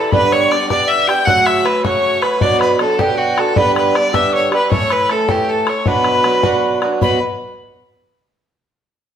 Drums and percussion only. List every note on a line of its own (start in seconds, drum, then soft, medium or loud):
0.12 bodhran medium
0.32 bodhran medium
0.52 bodhran medium
0.70 bodhran medium
1.09 bodhran medium
1.27 bodhran medium
1.46 bodhran medium
1.66 bodhran medium
1.85 bodhran medium
2.22 bodhran medium
2.41 bodhran medium
2.61 bodhran medium
2.79 bodhran medium
2.99 bodhran medium
3.38 bodhran medium
3.56 bodhran medium
3.76 bodhran medium
3.95 bodhran medium
4.14 bodhran medium
4.52 bodhran medium
4.72 bodhran medium
4.90 bodhran medium
5.09 bodhran medium
5.29 bodhran medium
5.67 bodhran medium
5.86 bodhran medium
6.04 bodhran medium
6.24 bodhran medium
6.43 bodhran medium
6.82 bodhran medium
7.02 bodhran medium